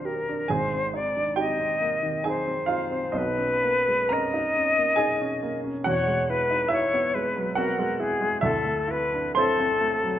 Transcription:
Already playing: D#1 D#2 A#3 D4 F4 G4 A#4 C5 A#5 C6
0.05 G4 A#4
0.29 D4
0.48 G#1 G#2 G#4 C5 G#5
0.74 C4
0.93 D#4 D5
1.16 D4
1.36 D#4 G4 D#5 G5
1.60 C4
1.81 A#3
2.03 D#3
2.24 D#4 G#4 C5 G#5
2.47 C4
2.66 D#4 F4 F5
2.91 C4
3.12 B1 B2 D#4 D#5
3.17 B4
3.38 C#4
3.63 A#3
3.88 G#3
4.09 C#4 A#4 A#5
4.13 D#5
4.34 D#4
4.55 C#4
4.78 A#3
4.96 D#4 G#4 G#5
5.21 C#4
5.43 A#3
5.64 C#4
5.84 E1 E2 F#4 C#5 F#5
6.07 G#3
6.30 E4 B4
6.51 D#4
6.68 E4 E5
6.73 C#5
6.94 B3
7.14 G#3 B4
7.36 F#3
7.55 B3 F#4 A#4 F#5
7.79 G#3
7.99 E4 G#4
8.21 G#3
8.41 D2 E4 A4 E5
8.64 A3
8.88 E4 B4
9.14 D4
9.35 E4 A4 C5 C6
9.60 C4
9.81 A3
10.03 F#3

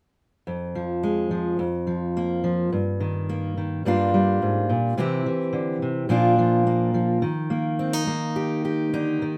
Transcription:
0.47 F2
0.75 F3
1.03 G#3
1.31 F3
1.59 F2
1.87 F3
2.17 A#3
2.44 F3
2.72 G2
3.00 D#3
3.29 A#3
3.57 D#3
3.85 G2 G3 A#3 D4 F4
4.14 G3
4.42 G#2
4.69 A#2
4.97 C3 E3 C4 E4 G4
5.26 E3
5.53 D3
5.82 C3
6.09 A#2 F3 A#3 D4 F4
6.38 F3
6.67 A#3
6.94 F3
7.22 D#3
7.50 A#3
7.79 C4
7.93 D#4
8.07 A#3
8.36 G4
8.65 G4
8.93 D3 D#4
9.22 D#3

